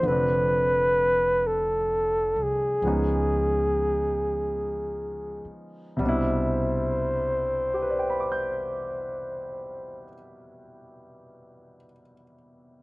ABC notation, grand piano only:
X:1
M:4/4
L:1/8
Q:"Swing" 1/4=35
K:C
V:1 name="Grand piano"
z8 | z2 [GBdgbd'g']6 |]
V:2 name="Grand piano"
[D,F,A,CD]4 [F,_A,_C_D_E]4 | [B,,C,G,DE]8 |]